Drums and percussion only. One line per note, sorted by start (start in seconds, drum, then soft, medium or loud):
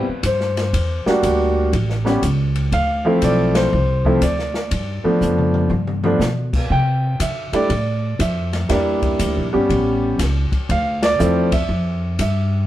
0.23 kick soft
0.23 hi-hat pedal medium
0.23 ride medium
0.40 snare soft
0.57 snare soft
0.57 ride soft
0.74 kick soft
0.74 ride medium
1.06 snare medium
1.23 kick soft
1.23 hi-hat pedal medium
1.23 ride medium
1.73 kick soft
1.73 ride medium
1.90 snare soft
2.06 snare soft
2.23 kick soft
2.23 hi-hat pedal medium
2.23 ride medium
2.55 ride soft
2.72 kick soft
2.72 ride medium
3.22 kick soft
3.22 hi-hat pedal medium
3.22 ride medium
3.55 snare medium
3.55 ride medium
4.05 kick soft
4.22 kick soft
4.22 hi-hat pedal medium
4.22 ride medium
4.39 snare soft
4.54 snare soft
4.71 kick soft
4.71 ride medium
5.21 hi-hat pedal medium
5.21 mid tom soft
5.38 mid tom medium
5.54 mid tom medium
5.71 high tom medium
5.87 high tom medium
6.04 high tom medium
6.21 snare medium
6.21 hi-hat pedal medium
6.53 kick medium
6.53 crash medium
6.70 kick soft
7.20 kick soft
7.20 hi-hat pedal medium
7.20 ride medium
7.53 ride soft
7.70 kick soft
7.70 ride medium
8.20 kick soft
8.20 hi-hat pedal medium
8.20 ride medium
8.53 snare soft
8.53 ride soft
8.69 kick soft
8.69 snare soft
8.69 ride medium
9.02 kick soft
9.02 ride soft
9.19 kick soft
9.19 hi-hat pedal medium
9.19 ride medium
9.70 kick soft
9.70 ride medium
10.19 kick soft
10.19 snare soft
10.19 hi-hat pedal soft
10.19 ride medium
10.52 kick medium
10.52 ride soft
10.69 kick soft
10.69 ride medium
11.03 snare medium
11.03 ride medium
11.20 hi-hat pedal medium
11.52 kick medium
11.52 ride medium
11.69 kick soft
12.19 kick soft
12.19 hi-hat pedal medium
12.19 ride medium